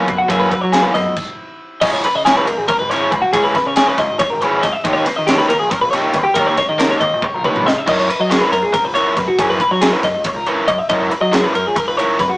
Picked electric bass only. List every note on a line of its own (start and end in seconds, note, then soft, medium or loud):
0.08 0.18 F#2 loud
0.30 0.50 F#2 loud
0.63 0.83 F#3 medium
0.95 1.05 F#2 loud
1.06 1.16 C#2 loud
1.82 2.02 C#2 loud
2.15 2.34 C#3 medium
2.47 2.57 C#2 loud
2.58 2.68 G#1 loud
2.81 3.09 G#1 loud
3.11 3.21 C#2 loud
3.33 3.53 C#2 loud
3.67 3.86 C#3 medium
3.98 4.08 C#2 loud
4.09 4.19 G#1 loud
4.33 4.61 G#1 medium
4.64 4.73 C#2 loud
4.85 5.04 D#2 loud
5.19 5.37 D#3 medium
5.51 5.60 D#2 loud
5.61 5.71 A#1 loud
5.83 6.12 A#1 medium
6.15 6.24 D#2 loud
6.36 6.56 D#2 loud
6.69 6.88 D#3 medium
7.01 7.11 D#2 loud
7.13 7.22 A#1 loud
7.35 7.63 A#1 medium
7.66 7.75 C#2 loud
7.88 8.07 F#2 loud
8.20 8.39 F#3 medium
8.52 8.62 F#2 loud
8.63 8.73 C#2 loud
8.84 9.13 C#2 medium
9.18 9.27 F#2 loud
9.39 9.58 F#2 loud
9.71 9.91 F#3 medium
10.03 10.13 F#2 loud
10.14 10.24 C#2 loud
10.34 10.64 C#2 medium
10.68 10.78 F#2 loud
10.89 11.09 F#2 loud
11.21 11.41 F#3 medium
11.55 11.65 F#2 loud
11.67 11.76 C#2 loud
11.88 12.17 C#2 medium
12.20 12.30 F#2 loud